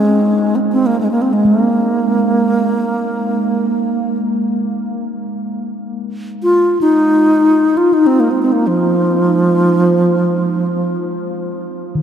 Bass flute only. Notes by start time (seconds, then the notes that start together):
Already playing: G#3
0.55 C4
0.72 C4
0.86 A#3
1.01 G#3
1.11 A#3
1.22 C4
1.33 G#3
1.46 A#3
6.43 F4
6.81 D#4
7.77 F4
7.93 D#4
8.07 C4
8.20 A#3
8.31 C4
8.42 C4
8.52 A#3
8.67 F3